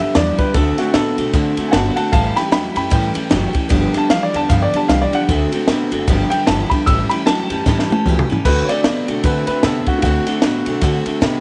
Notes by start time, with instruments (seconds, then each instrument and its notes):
0.00 clean electric guitar G2 D3, steel-string acoustic guitar F3 G3 B3 G4, upright piano E5
0.15 upright bass E2, clean electric guitar G2 E3, steel-string acoustic guitar F3 G3 B3 G4, upright piano D5, snare, ride
0.38 clean electric guitar G2 D3, steel-string acoustic guitar F3 G3 B3 G4, upright piano B4, kick, ride
0.54 upright bass D2, steel-string acoustic guitar D3 A3 C4 F#4, clean electric guitar D3 A3, upright piano A4, kick, ride
0.78 clean electric guitar D3 A3, steel-string acoustic guitar A3 C4 F#4, upright piano F#4, snare, ride
0.94 upright bass A2, steel-string acoustic guitar D3 A3 C4 F#4, clean electric guitar D3 B3, upright piano A4, snare, ride
1.18 upright bass B2, clean electric guitar D3 A3, steel-string acoustic guitar A3 C4 F#4, ride
1.33 upright bass D3, steel-string acoustic guitar D3 A3 C4 F#4, clean electric guitar D3 A3, kick, ride
1.57 clean electric guitar D3 A3, steel-string acoustic guitar A3 C4 F#4, muted upright bass stroke, ride
1.68 upright piano F#5 G#5
1.72 upright bass G1, clean electric guitar D3 B3, steel-string acoustic guitar D3 A3 C4 F#4, upright piano A5, snare, ride
1.96 clean electric guitar D3 A3, steel-string acoustic guitar A3 C4 F#4, upright piano F#5 A5, muted upright bass stroke, ride
2.12 upright bass A1, clean electric guitar A2 E3, steel-string acoustic guitar A2 E3 G3 C#4 G4, upright piano F5 A5, kick, ride
2.36 clean electric guitar A2 E3, steel-string acoustic guitar G3 C#4 G4, upright piano G5 B5, muted upright bass stroke, snare, ride
2.52 upright bass E2, clean electric guitar A2 F#3, steel-string acoustic guitar E3 G3 C#4 G4, upright piano G5 B5, snare, ride
2.75 upright bass F#2, clean electric guitar A2 E3, steel-string acoustic guitar G3 C#4 G4, upright piano G5 B5, ride
2.90 steel-string acoustic guitar A2 E3 G3 C#4 G4, clean electric guitar A2 E3, upright bass A2, upright piano G5, kick, ride
3.14 clean electric guitar A2 E3, steel-string acoustic guitar G3 C#4 G4, muted upright bass stroke, ride
3.30 upright bass F#1, clean electric guitar A2 F#3, steel-string acoustic guitar E3 G3 C#4 G4, snare, ride
3.53 clean electric guitar A2 E3, steel-string acoustic guitar G3 C#4 G4, kick, ride
3.69 upright bass G1, steel-string acoustic guitar G2 D3 F3 G3 B3 G4, clean electric guitar G2 D3, kick, ride
3.94 clean electric guitar G2 D3, steel-string acoustic guitar F3 G3 B3 G4, upright piano A5, muted upright bass stroke, snare, ride
4.10 upright bass D2, clean electric guitar G2 E3, steel-string acoustic guitar F3 G3 B3 G4, upright piano F5, snare, ride
4.23 upright piano D5
4.33 upright bass E2, clean electric guitar G2 D3, steel-string acoustic guitar F3 G3 B3 G4, upright piano A5, ride
4.49 steel-string acoustic guitar G2 D3 F3 G3 B3 G4, clean electric guitar G2 D3, upright bass G2, upright piano F5, kick, ride
4.62 upright piano D5
4.73 clean electric guitar G2 D3, steel-string acoustic guitar F3 G3 B3 G4, upright piano A5, muted upright bass stroke, ride
4.88 upright bass C2, clean electric guitar G2 E3, steel-string acoustic guitar F3 G3 B3 G4, upright piano F5, snare, ride
5.02 upright piano D5
5.12 clean electric guitar G2 D3, steel-string acoustic guitar F3 G3 B3 G4, upright piano F#5, muted upright bass stroke, ride
5.29 upright bass D2, clean electric guitar D3 A3, steel-string acoustic guitar D3 A3 C4 F#4, kick, ride
5.52 clean electric guitar D3 A3, steel-string acoustic guitar A3 C4 F#4, ride
5.68 upright bass A2, steel-string acoustic guitar D3 A3 C4 F#4, clean electric guitar D3 B3, snare, ride
5.91 upright bass F#1, clean electric guitar D3 A3, steel-string acoustic guitar A3 C4 F#4, ride
6.07 upright bass G1, steel-string acoustic guitar G2 D3 F3 G3 B3 G4, clean electric guitar G2 D3, kick, ride
6.30 clean electric guitar G2 D3, steel-string acoustic guitar G3 B3 G4, upright piano G5, ride
6.34 steel-string acoustic guitar F3
6.46 upright bass G1, clean electric guitar G2 E3, steel-string acoustic guitar F3 G3 B3, upright piano A5, snare, ride
6.51 steel-string acoustic guitar G4
6.70 clean electric guitar G2 D3, steel-string acoustic guitar G3 B3 G4, upright piano B5, kick, ride
6.74 steel-string acoustic guitar F3
6.86 upright bass A1, clean electric guitar A2 E3, steel-string acoustic guitar A2 E3 G3 C#4 G4, upright piano E6, kick, ride
7.09 clean electric guitar A2 E3, steel-string acoustic guitar G3 C#4 G4, upright piano B5, muted upright bass stroke, ride
7.26 upright bass E2, clean electric guitar A2 F#3, steel-string acoustic guitar E3 G3 C#4 G4, upright piano A5, snare, ride
7.50 upright bass F#2, clean electric guitar A2 E3, steel-string acoustic guitar G3 C#4 G4, ride
7.66 steel-string acoustic guitar A2 E3 G3 C#4 G4, clean electric guitar A2 E3, upright bass A2, kick, snare
7.79 snare
7.90 clean electric guitar A2 E3, steel-string acoustic guitar G3 C#4 G4, muted upright bass stroke, high tom
8.06 upright bass C#2, clean electric guitar A2 F#3, steel-string acoustic guitar E3 G3 C#4 G4, mid tom
8.19 mid tom
8.29 clean electric guitar A2 E3, steel-string acoustic guitar G3 C#4 G4, muted upright bass stroke, floor tom
8.45 upright bass D2, clean electric guitar D3 A3, steel-string acoustic guitar D3 A3 C4 F#4, upright piano B4, kick, crash
8.65 steel-string acoustic guitar F#4, upright piano C#5
8.69 clean electric guitar D3 A3, steel-string acoustic guitar A3 C4, upright piano D5, snare, ride
8.84 upright bass A2, steel-string acoustic guitar D3 A3 C4 F#4, clean electric guitar D3 B3, snare, ride
9.08 upright bass B2, clean electric guitar D3 A3, steel-string acoustic guitar A3 C4 F#4, ride
9.24 upright bass D3, clean electric guitar D3 A3, steel-string acoustic guitar D3 A3 C4 F#4, upright piano B4, kick, ride
9.47 clean electric guitar D3 A3, steel-string acoustic guitar C4 F#4, upright piano B4, muted upright bass stroke, ride
9.51 steel-string acoustic guitar A3
9.63 upright bass C3, clean electric guitar D3 B3, steel-string acoustic guitar D3 A3 C4, upright piano A4, snare, ride
9.67 steel-string acoustic guitar F#4
9.86 clean electric guitar D3 A3, steel-string acoustic guitar C4 F#4, upright piano F#4, muted upright bass stroke, kick, ride
9.90 steel-string acoustic guitar A3
9.99 upright piano F4, ride
10.03 upright bass D2, clean electric guitar D3 A3, steel-string acoustic guitar D3 A3 C4 F#4, upright piano F#4, kick
10.27 clean electric guitar D3 A3, steel-string acoustic guitar A3 C4 F#4, muted upright bass stroke, snare, ride
10.42 upright bass A2, clean electric guitar D3 B3, steel-string acoustic guitar D3 A3 C4, snare, ride
10.46 steel-string acoustic guitar F#4
10.66 upright bass B2, clean electric guitar D3 A3, steel-string acoustic guitar A3 C4 F#4, ride
10.81 upright bass D3, steel-string acoustic guitar D3 A3 C4 F#4, clean electric guitar D3 A3, kick, ride
11.06 clean electric guitar D3 A3, steel-string acoustic guitar A3 C4 F#4, muted upright bass stroke, ride
11.21 upright bass C3, steel-string acoustic guitar D3 A3 C4 F#4, clean electric guitar D3 B3, snare, ride